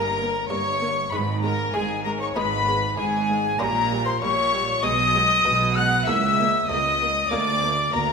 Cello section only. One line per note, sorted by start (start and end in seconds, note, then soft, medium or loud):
0.00 0.43 G2 medium
0.50 1.05 G2 medium
1.12 1.67 G#2 medium
1.75 2.29 G#2 medium
2.36 2.91 G#2 medium
2.98 3.52 G#2 loud
3.60 4.15 A#2 medium
4.22 4.77 A#2 medium
4.83 5.38 B2 medium
5.46 6.00 B2 medium
6.08 6.62 C#2 loud
6.70 7.24 C#2 medium
7.32 7.86 D2 medium
7.94 8.13 D2 medium